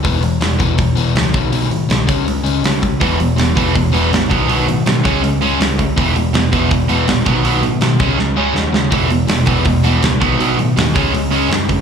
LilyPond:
<<
  \new Staff \with { instrumentName = "Overdriven electric guitar" } { \clef bass \time 4/4 \key e \major \tempo 4 = 162 <e gis b>8 <e gis>8 <e gis>8 <e gis b>8 <e gis>8 <e gis b>8 <e gis>8 <b, dis fis>8 | <b, dis fis>8 <b, dis>8 <b, dis>8 <cis gis cis'>8 <cis gis>8 <cis gis cis'>8 <cis gis>8 <cis gis>8 | <e gis b>8 <e gis>8 <e gis>8 <e gis b>8 <e gis>8 <e gis b>8 <e gis>8 <b, dis fis>8 | <b, dis fis>8 <b, dis>8 <b, dis>8 <cis gis cis'>8 <cis gis>8 <cis gis cis'>8 <cis gis>8 <cis gis>8 |
<e gis b>8 <e gis>8 <e gis>8 <e gis b>8 <e gis>8 <e gis b>8 <e gis>8 <b, dis fis>8 | <b, dis fis>8 <b, dis>8 <b, dis>8 <cis gis cis'>8 <cis gis>8 <cis gis cis'>8 <cis gis>8 <cis gis>8 | <e gis b>8 <e gis>8 <e gis>8 <e gis b>8 <e gis>8 <e gis b>8 <e gis>8 <b, dis fis>8 | <b, dis fis>8 <b, dis>8 <b, dis>8 <cis gis cis'>8 <cis gis>8 <cis gis cis'>8 <cis gis>8 <cis gis>8 | }
  \new Staff \with { instrumentName = "Distorted electric guitar" } { \clef bass \time 4/4 \key e \major r1 | r1 | <e, b, e>8 <e, b,>8 <e, b,>8 <e, b, e>8 <e, b,>8 <e, b, e>8 <e, b,>8 <b, fis b>8 | <b, fis b>8 <b, fis>8 <b, fis>8 <cis gis cis'>8 <cis gis>8 <cis gis cis'>8 <cis gis>8 <cis gis>8 |
<e, b, e>8 <e, b,>8 <e, b,>8 <e, b, e>8 <e, b,>8 <e, b, e>8 <e, b,>8 <b, fis b>8 | <b, fis b>8 <b, fis>8 <b, fis>8 <cis gis cis'>8 <cis gis>8 <cis gis cis'>8 <cis gis>8 <cis gis>8 | <e, b, e>8 <e, b,>8 <e, b,>8 <e, b, e>8 <e, b,>8 <e, b, e>8 <e, b,>8 <b, fis b>8 | <b, fis b>8 <b, fis>8 <b, fis>8 <cis gis cis'>8 <cis gis>8 <cis gis cis'>8 <cis gis>8 <cis gis>8 | }
  \new Staff \with { instrumentName = "Picked electric bass" } { \clef bass \time 4/4 \key e \major e,,4 e,,8 e,,8 e,,8 e,,8 cis,8 b,,8 | b,,8 a,8 c,8 cis,8 cis,4 cis,4 | e,,4 e,,8 e,,8 e,,8 e,,8 a,,8 b,,8 | b,,8 a,8 b,8 cis,8 cis,4 cis,4 |
e,,4 e,,8 e,,8 e,,8 e,,8 ais,,8 b,,8 | b,,8 a,8 b,8 cis,8 cis,4 dis,4 | e,,4 e,,8 e,,8 e,,8 e,,8 cis,8 b,,8 | b,,8 a,8 dis,8 cis,8 cis,4 fis,4 | }
  \new DrumStaff \with { instrumentName = "Drums" } \drummode { \time 4/4 <hho bd>8 hho8 <hho sn>8 <hho bd>8 <hho bd>8 hho8 <hho sn>8 <hho bd>8 | hho8 hho8 <hho sn>8 <hho bd>8 hho8 hho8 <hho sn>8 <hho bd>8 | <hho bd>8 hho8 <hho sn>8 <hho bd>8 <hho bd>8 hho8 <hho sn>8 <hho bd>8 | hho8 hho8 <hho sn>8 <hho bd>8 hho8 hho8 <hho sn>8 <hho bd>8 |
<hho bd>8 hho8 <hho sn>8 <hho bd>8 <hho bd>8 hho8 <hho sn>8 <hho bd>8 | hho8 hho8 <hho sn>8 <hho bd>8 sn4 sn8 sn8 | <hho bd>8 hho8 <hho sn>8 <hho bd>8 <hho bd>8 hho8 <hho sn>8 <hho bd>8 | hho8 hho8 <hho sn>8 <hho bd>8 hho8 hho8 <hho sn>8 <hho bd>8 | }
>>